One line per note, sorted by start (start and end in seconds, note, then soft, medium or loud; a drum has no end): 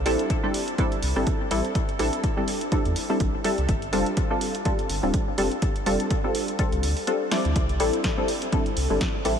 0.06 0.17 A1 medium
0.06 0.40 G3 loud
0.06 0.40 C4 medium
0.06 0.40 D4 medium
0.06 0.40 E4 medium
0.06 0.40 A4 loud
0.06 open hi-hat loud
0.19 closed hi-hat soft
0.30 kick loud
0.30 closed hi-hat medium
0.43 0.76 G3 medium
0.43 0.76 C4 medium
0.43 0.76 D4 medium
0.43 0.76 E4 medium
0.43 0.76 A4 medium
0.54 open hi-hat loud
0.68 closed hi-hat soft
0.78 1.13 G3 medium
0.78 1.13 C4 medium
0.78 1.13 D4 medium
0.78 1.13 E4 medium
0.78 1.13 A4 medium
0.78 kick loud
0.78 closed hi-hat medium
0.92 closed hi-hat soft
1.02 1.13 C2 medium
1.02 open hi-hat loud
1.16 1.25 G1 loud
1.16 1.48 G3 medium
1.16 1.48 C4 medium
1.16 1.48 D4 medium
1.16 1.48 E4 medium
1.16 1.49 A4 medium
1.27 kick loud
1.27 closed hi-hat medium
1.51 1.62 A1 loud
1.51 1.62 G3 medium
1.51 1.62 C4 medium
1.51 1.62 D4 medium
1.51 1.62 E4 medium
1.51 1.62 A4 loud
1.51 open hi-hat loud
1.65 closed hi-hat soft
1.75 kick loud
1.75 closed hi-hat medium
1.89 closed hi-hat soft
1.99 2.10 A1 medium
1.99 2.34 G3 loud
1.99 2.34 C4 medium
1.99 2.34 D4 medium
1.99 2.34 E4 medium
1.99 2.34 A4 loud
1.99 open hi-hat loud
2.13 closed hi-hat medium
2.24 kick loud
2.24 closed hi-hat medium
2.37 2.69 G3 medium
2.37 2.69 C4 medium
2.37 2.69 D4 medium
2.37 2.69 E4 medium
2.37 2.69 A4 medium
2.48 open hi-hat loud
2.61 closed hi-hat soft
2.72 3.06 G3 medium
2.72 3.06 C4 medium
2.72 3.06 D4 medium
2.72 3.07 E4 medium
2.72 3.07 A4 medium
2.72 kick loud
2.72 closed hi-hat medium
2.85 2.94 E2 medium
2.85 closed hi-hat soft
2.96 open hi-hat loud
3.09 3.42 G3 medium
3.09 3.42 C4 medium
3.09 3.42 D4 medium
3.09 3.42 E4 medium
3.09 3.42 A4 medium
3.20 3.31 A1 medium
3.20 kick loud
3.20 closed hi-hat medium
3.44 3.55 G3 medium
3.44 3.56 C4 medium
3.44 3.56 D4 medium
3.44 3.56 E4 medium
3.44 3.56 A4 loud
3.44 open hi-hat loud
3.58 3.67 C2 medium
3.58 closed hi-hat soft
3.69 3.94 G1 loud
3.69 kick loud
3.69 closed hi-hat medium
3.82 closed hi-hat soft
3.93 4.04 F1 medium
3.93 4.27 G3 loud
3.93 4.27 C4 medium
3.93 4.27 D4 medium
3.93 4.27 F4 medium
3.93 4.27 A4 loud
3.93 open hi-hat medium
4.06 closed hi-hat soft
4.17 kick loud
4.17 closed hi-hat medium
4.30 4.63 G3 medium
4.30 4.63 C4 medium
4.30 4.63 D4 medium
4.30 4.63 F4 medium
4.30 4.63 A4 medium
4.41 open hi-hat medium
4.55 closed hi-hat medium
4.65 5.00 G3 medium
4.65 5.00 C4 medium
4.65 5.00 D4 medium
4.65 5.00 F4 medium
4.65 5.00 A4 medium
4.65 kick loud
4.65 closed hi-hat medium
4.79 closed hi-hat soft
4.89 5.00 G1 medium
4.89 open hi-hat medium
5.03 5.12 D1 loud
5.03 5.35 G3 medium
5.03 5.35 C4 medium
5.03 5.35 D4 medium
5.03 5.36 F4 medium
5.03 5.36 A4 medium
5.14 kick loud
5.14 closed hi-hat medium
5.38 5.49 F1 loud
5.38 5.49 G3 medium
5.38 5.49 C4 medium
5.38 5.49 D4 medium
5.38 5.49 F4 medium
5.38 5.49 A4 loud
5.38 open hi-hat loud
5.51 closed hi-hat soft
5.62 kick loud
5.62 closed hi-hat medium
5.76 closed hi-hat soft
5.86 5.97 F1 medium
5.86 6.21 G3 loud
5.86 6.21 C4 medium
5.86 6.21 D4 medium
5.86 6.21 F4 medium
5.86 6.21 A4 loud
5.86 open hi-hat loud
6.00 closed hi-hat medium
6.11 kick loud
6.11 closed hi-hat medium
6.24 6.56 G3 medium
6.24 6.56 C4 medium
6.24 6.56 D4 medium
6.24 6.56 F4 medium
6.24 6.57 A4 medium
6.35 open hi-hat loud
6.48 closed hi-hat medium
6.59 6.93 G3 medium
6.59 6.93 C4 medium
6.59 6.93 D4 medium
6.59 6.94 F4 medium
6.59 6.94 A4 medium
6.59 kick loud
6.59 closed hi-hat medium
6.72 6.85 C2 medium
6.72 closed hi-hat soft
6.83 6.94 D2 medium
6.83 open hi-hat loud
6.97 open hi-hat medium
7.07 7.29 G3 medium
7.07 7.29 C4 medium
7.07 7.29 D4 medium
7.07 7.29 F4 medium
7.07 7.29 A4 medium
7.07 closed hi-hat medium
7.31 7.77 G3 medium
7.31 7.77 C4 medium
7.31 7.77 D4 medium
7.31 7.77 E4 medium
7.31 7.78 D5 medium
7.31 snare medium
7.31 open hi-hat loud
7.45 7.54 D2 medium
7.45 closed hi-hat soft
7.56 7.81 C2 loud
7.56 kick loud
7.56 closed hi-hat medium
7.69 closed hi-hat soft
7.80 7.91 A1 medium
7.80 8.14 G3 loud
7.80 8.14 C4 medium
7.80 8.14 D4 medium
7.80 8.15 E4 medium
7.80 8.15 A4 loud
7.80 open hi-hat loud
7.93 closed hi-hat medium
8.04 kick loud
8.04 snare loud
8.04 closed hi-hat medium
8.17 8.50 G3 medium
8.17 8.50 C4 medium
8.17 8.50 D4 medium
8.17 8.50 E4 medium
8.17 8.50 A4 medium
8.28 open hi-hat loud
8.42 closed hi-hat medium
8.52 8.87 G3 medium
8.52 8.87 C4 medium
8.52 8.87 D4 medium
8.52 8.87 E4 medium
8.52 8.87 A4 medium
8.52 kick loud
8.52 closed hi-hat medium
8.66 closed hi-hat soft
8.77 8.87 C2 medium
8.77 open hi-hat loud
8.90 8.99 G1 loud
8.90 9.22 G3 medium
8.90 9.23 C4 medium
8.90 9.23 D4 medium
8.90 9.23 E4 medium
8.90 9.23 A4 medium
9.01 kick loud
9.01 snare loud
9.01 closed hi-hat medium
9.25 9.36 A1 loud
9.25 9.36 G3 medium
9.25 9.36 C4 medium
9.25 9.36 D4 medium
9.25 9.36 E4 medium
9.25 9.36 A4 loud
9.25 open hi-hat loud